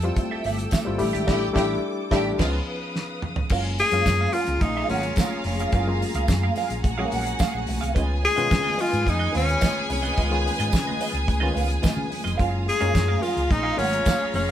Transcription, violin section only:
0, 0, Header, 1, 2, 480
1, 0, Start_track
1, 0, Tempo, 555556
1, 1112, Time_signature, 4, 2, 24, 8
1, 12537, End_track
2, 0, Start_track
2, 0, Title_t, "Violin section"
2, 0, Program_c, 0, 48
2, 0, Note_on_c, 0, 69, 87
2, 0, Note_on_c, 0, 81, 107
2, 603, Note_off_c, 0, 81, 0
2, 604, Note_off_c, 0, 69, 0
2, 871, Note_on_c, 0, 67, 82
2, 871, Note_on_c, 0, 79, 93
2, 1101, Note_off_c, 0, 79, 0
2, 1103, Note_off_c, 0, 67, 0
2, 1111, Note_on_c, 0, 79, 107
2, 1113, Note_on_c, 0, 67, 105
2, 1275, Note_off_c, 0, 79, 0
2, 1276, Note_off_c, 0, 67, 0
2, 1345, Note_on_c, 0, 67, 88
2, 1345, Note_on_c, 0, 79, 108
2, 1511, Note_off_c, 0, 67, 0
2, 1511, Note_off_c, 0, 79, 0
2, 1838, Note_on_c, 0, 67, 102
2, 1841, Note_on_c, 0, 79, 103
2, 1998, Note_off_c, 0, 67, 0
2, 2000, Note_off_c, 0, 79, 0
2, 2060, Note_on_c, 0, 65, 101
2, 2061, Note_on_c, 0, 77, 93
2, 2228, Note_off_c, 0, 65, 0
2, 2229, Note_off_c, 0, 77, 0
2, 3040, Note_on_c, 0, 65, 97
2, 3044, Note_on_c, 0, 77, 102
2, 5881, Note_off_c, 0, 65, 0
2, 5883, Note_off_c, 0, 77, 0
2, 5912, Note_on_c, 0, 66, 91
2, 5916, Note_on_c, 0, 78, 105
2, 6852, Note_off_c, 0, 66, 0
2, 6854, Note_off_c, 0, 78, 0
2, 6870, Note_on_c, 0, 68, 107
2, 6873, Note_on_c, 0, 80, 110
2, 10676, Note_off_c, 0, 68, 0
2, 10677, Note_off_c, 0, 80, 0
2, 10713, Note_on_c, 0, 77, 102
2, 10717, Note_on_c, 0, 65, 95
2, 12537, Note_off_c, 0, 65, 0
2, 12537, Note_off_c, 0, 77, 0
2, 12537, End_track
0, 0, End_of_file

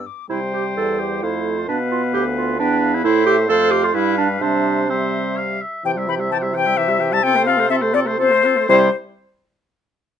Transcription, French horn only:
0, 0, Header, 1, 2, 480
1, 0, Start_track
1, 0, Key_signature, 0, "major"
1, 0, Tempo, 466200
1, 310, Time_signature, 3, 2, 24, 8
1, 1265, Tempo, 452148
1, 4145, Tempo, 478088
1, 6065, Tempo, 461894
1, 7985, Tempo, 488599
1, 10430, End_track
2, 0, Start_track
2, 0, Title_t, "French horn"
2, 0, Program_c, 0, 60
2, 304, Note_on_c, 0, 55, 55
2, 1258, Note_on_c, 0, 57, 54
2, 1274, Note_off_c, 0, 55, 0
2, 1742, Note_off_c, 0, 57, 0
2, 1748, Note_on_c, 0, 59, 73
2, 2692, Note_off_c, 0, 59, 0
2, 2712, Note_on_c, 0, 59, 75
2, 3188, Note_on_c, 0, 57, 80
2, 3204, Note_off_c, 0, 59, 0
2, 3657, Note_off_c, 0, 57, 0
2, 3664, Note_on_c, 0, 57, 77
2, 4146, Note_on_c, 0, 55, 70
2, 4161, Note_off_c, 0, 57, 0
2, 4609, Note_off_c, 0, 55, 0
2, 4615, Note_on_c, 0, 55, 71
2, 5090, Note_off_c, 0, 55, 0
2, 5096, Note_on_c, 0, 55, 68
2, 5809, Note_off_c, 0, 55, 0
2, 6053, Note_on_c, 0, 52, 74
2, 6181, Note_on_c, 0, 55, 73
2, 6196, Note_off_c, 0, 52, 0
2, 6297, Note_on_c, 0, 52, 71
2, 6312, Note_off_c, 0, 55, 0
2, 6415, Note_on_c, 0, 55, 54
2, 6431, Note_off_c, 0, 52, 0
2, 6534, Note_off_c, 0, 55, 0
2, 6540, Note_on_c, 0, 52, 58
2, 6656, Note_on_c, 0, 55, 59
2, 6671, Note_off_c, 0, 52, 0
2, 6773, Note_on_c, 0, 52, 62
2, 6789, Note_off_c, 0, 55, 0
2, 6900, Note_on_c, 0, 55, 67
2, 6915, Note_off_c, 0, 52, 0
2, 7007, Note_off_c, 0, 55, 0
2, 7013, Note_on_c, 0, 52, 67
2, 7130, Note_on_c, 0, 55, 67
2, 7146, Note_off_c, 0, 52, 0
2, 7248, Note_on_c, 0, 52, 69
2, 7263, Note_off_c, 0, 55, 0
2, 7374, Note_on_c, 0, 55, 75
2, 7389, Note_off_c, 0, 52, 0
2, 7491, Note_off_c, 0, 55, 0
2, 7497, Note_on_c, 0, 60, 92
2, 7620, Note_on_c, 0, 57, 82
2, 7636, Note_off_c, 0, 60, 0
2, 7733, Note_on_c, 0, 60, 83
2, 7749, Note_off_c, 0, 57, 0
2, 7852, Note_on_c, 0, 57, 67
2, 7868, Note_off_c, 0, 60, 0
2, 7971, Note_off_c, 0, 57, 0
2, 7977, Note_on_c, 0, 60, 80
2, 8097, Note_on_c, 0, 57, 82
2, 8112, Note_off_c, 0, 60, 0
2, 8216, Note_on_c, 0, 60, 84
2, 8230, Note_off_c, 0, 57, 0
2, 8332, Note_on_c, 0, 57, 87
2, 8346, Note_off_c, 0, 60, 0
2, 8457, Note_off_c, 0, 57, 0
2, 8462, Note_on_c, 0, 60, 83
2, 8584, Note_on_c, 0, 57, 83
2, 8598, Note_off_c, 0, 60, 0
2, 8712, Note_on_c, 0, 60, 76
2, 8727, Note_off_c, 0, 57, 0
2, 8834, Note_on_c, 0, 57, 68
2, 8849, Note_off_c, 0, 60, 0
2, 8947, Note_off_c, 0, 57, 0
2, 8953, Note_on_c, 0, 55, 104
2, 9154, Note_off_c, 0, 55, 0
2, 10430, End_track
0, 0, End_of_file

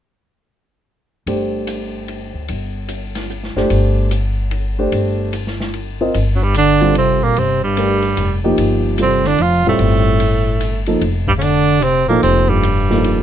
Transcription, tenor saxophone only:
0, 0, Header, 1, 2, 480
1, 0, Start_track
1, 0, Tempo, 406229
1, 1501, Time_signature, 3, 2, 24, 8
1, 15629, End_track
2, 0, Start_track
2, 0, Title_t, "Tenor saxophone"
2, 0, Program_c, 0, 66
2, 7509, Note_on_c, 0, 54, 54
2, 7601, Note_on_c, 0, 55, 74
2, 7619, Note_off_c, 0, 54, 0
2, 7760, Note_off_c, 0, 55, 0
2, 7771, Note_on_c, 0, 62, 88
2, 8205, Note_off_c, 0, 62, 0
2, 8250, Note_on_c, 0, 60, 78
2, 8548, Note_on_c, 0, 58, 78
2, 8566, Note_off_c, 0, 60, 0
2, 8729, Note_on_c, 0, 60, 84
2, 8747, Note_off_c, 0, 58, 0
2, 9019, Note_off_c, 0, 60, 0
2, 9026, Note_on_c, 0, 55, 74
2, 9931, Note_off_c, 0, 55, 0
2, 10663, Note_on_c, 0, 60, 78
2, 10961, Note_on_c, 0, 62, 79
2, 10979, Note_off_c, 0, 60, 0
2, 11134, Note_on_c, 0, 65, 83
2, 11152, Note_off_c, 0, 62, 0
2, 11425, Note_off_c, 0, 65, 0
2, 11445, Note_on_c, 0, 57, 81
2, 12818, Note_off_c, 0, 57, 0
2, 13333, Note_on_c, 0, 55, 77
2, 13383, Note_off_c, 0, 55, 0
2, 13457, Note_on_c, 0, 61, 65
2, 13507, Note_on_c, 0, 62, 88
2, 13525, Note_off_c, 0, 61, 0
2, 13980, Note_on_c, 0, 60, 80
2, 13998, Note_off_c, 0, 62, 0
2, 14275, Note_off_c, 0, 60, 0
2, 14282, Note_on_c, 0, 58, 77
2, 14442, Note_off_c, 0, 58, 0
2, 14449, Note_on_c, 0, 60, 87
2, 14763, Note_on_c, 0, 55, 73
2, 14780, Note_off_c, 0, 60, 0
2, 15629, Note_off_c, 0, 55, 0
2, 15629, End_track
0, 0, End_of_file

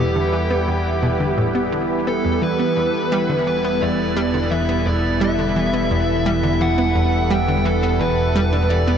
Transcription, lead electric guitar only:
0, 0, Header, 1, 2, 480
1, 0, Start_track
1, 0, Key_signature, 1, "minor"
1, 0, Tempo, 697674
1, 1668, Time_signature, 4, 2, 24, 8
1, 6177, End_track
2, 0, Start_track
2, 0, Title_t, "Lead electric guitar"
2, 0, Program_c, 0, 29
2, 0, Note_on_c, 0, 67, 83
2, 1161, Note_off_c, 0, 67, 0
2, 1432, Note_on_c, 0, 69, 81
2, 1668, Note_off_c, 0, 69, 0
2, 1670, Note_on_c, 0, 71, 86
2, 2381, Note_off_c, 0, 71, 0
2, 2389, Note_on_c, 0, 71, 86
2, 2628, Note_on_c, 0, 74, 92
2, 2636, Note_off_c, 0, 71, 0
2, 3104, Note_off_c, 0, 74, 0
2, 3107, Note_on_c, 0, 76, 94
2, 3346, Note_off_c, 0, 76, 0
2, 3349, Note_on_c, 0, 74, 96
2, 3584, Note_off_c, 0, 74, 0
2, 3586, Note_on_c, 0, 76, 101
2, 4301, Note_off_c, 0, 76, 0
2, 4310, Note_on_c, 0, 76, 100
2, 4551, Note_on_c, 0, 78, 105
2, 4556, Note_off_c, 0, 76, 0
2, 5027, Note_off_c, 0, 78, 0
2, 5029, Note_on_c, 0, 79, 102
2, 5268, Note_on_c, 0, 69, 93
2, 5276, Note_off_c, 0, 79, 0
2, 5505, Note_off_c, 0, 69, 0
2, 5507, Note_on_c, 0, 71, 102
2, 5985, Note_on_c, 0, 74, 97
2, 6002, Note_off_c, 0, 71, 0
2, 6177, Note_off_c, 0, 74, 0
2, 6177, End_track
0, 0, End_of_file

